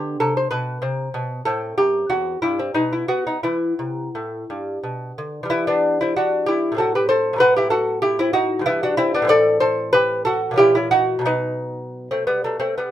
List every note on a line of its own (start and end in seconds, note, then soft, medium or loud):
0.00 0.15 D3 medium
0.00 0.80 B3 medium
0.00 0.19 G4 medium
0.20 0.46 C3 medium
0.20 0.36 A4 medium
0.37 0.50 C5 medium
0.51 0.77 B2 medium
0.51 0.82 B4 medium
0.82 1.08 C3 medium
0.82 1.42 C4 medium
1.14 1.40 B2 medium
1.45 1.72 A2 medium
1.45 2.58 C4 medium
1.45 1.76 A4 medium
1.78 2.04 F#2 medium
1.78 2.09 G4 loud
2.10 2.36 E2 medium
2.10 2.41 F#4 medium
2.42 2.69 G2 medium
2.42 2.59 E4 medium
2.59 2.74 C4 medium
2.74 3.02 B2 medium
2.74 3.08 B3 soft
2.74 2.91 D#4 medium
2.93 3.08 E4 medium
3.08 3.37 B3 medium
3.08 3.26 F#4 medium
3.27 3.43 D#4 medium
3.43 3.72 E3 medium
3.43 5.48 B3 soft
3.43 4.80 E4 medium
3.79 4.08 C3 medium
4.15 4.43 A2 medium
4.50 4.78 G2 medium
4.83 5.11 B2 medium
5.18 5.43 D3 medium
5.43 6.71 E3 medium
5.43 6.72 G3 medium
5.50 5.66 B3 medium
5.50 5.67 E4 loud
5.67 5.98 B3 medium
5.67 5.98 D4 medium
6.01 6.16 C4 medium
6.01 6.16 E4 medium
6.16 6.46 D4 medium
6.16 6.46 F#4 medium
6.46 6.77 E4 medium
6.46 6.77 G4 medium
6.72 7.32 A2 medium
6.72 7.35 F#3 soft
6.77 7.38 C4 soft
6.77 6.94 F#4 medium
6.77 6.94 A4 medium
6.95 7.09 G4 medium
6.95 7.08 B4 medium
7.09 7.39 A4 medium
7.09 7.39 C5 medium
7.33 8.59 A2 medium
7.33 8.60 F#3 soft
7.38 8.61 B3 medium
7.38 7.55 F#4 medium
7.38 7.56 B4 loud
7.56 7.71 E4 medium
7.56 7.70 G4 medium
7.70 8.01 F#4 medium
7.70 8.01 A4 medium
8.02 8.18 E4 medium
8.02 8.18 G4 loud
8.19 8.34 C4 medium
8.19 8.33 E4 medium
8.33 8.64 D#4 medium
8.33 8.64 F#4 loud
8.59 9.22 G2 medium
8.59 9.24 E3 medium
8.66 8.81 B3 medium
8.66 8.82 E4 loud
8.83 8.98 D4 medium
8.83 8.97 F#4 medium
8.97 9.13 C4 medium
8.97 9.14 E4 loud
9.14 9.30 B3 medium
9.14 9.30 D4 medium
9.22 10.51 A2 medium
9.22 10.52 E3 medium
9.27 10.53 C4 medium
9.27 9.60 A4 loud
9.27 9.60 D5 loud
9.60 9.91 A4 medium
9.60 9.92 C5 loud
9.93 10.24 G4 medium
9.93 10.24 B4 loud
10.25 10.56 F#4 medium
10.25 10.57 A4 loud
10.51 11.18 A#2 medium
10.51 11.21 E3 medium
10.56 10.75 C#4 medium
10.56 10.74 E4 medium
10.56 10.75 G4 loud
10.75 10.92 C#4 medium
10.75 10.91 E4 medium
10.91 11.24 D#4 medium
10.91 11.25 F#4 loud
11.19 12.91 B2 medium
11.19 12.45 F#3 medium
11.26 12.07 B3 medium
11.26 12.08 D#4 medium
12.11 12.27 A3 soft
12.11 12.27 C4 medium
12.27 12.44 G3 medium
12.27 12.44 B3 medium
12.44 12.60 F#3 medium
12.44 12.59 A3 medium
12.60 12.77 A3 medium
12.60 12.77 C4 medium
12.78 12.91 G3 soft
12.78 12.91 B3 medium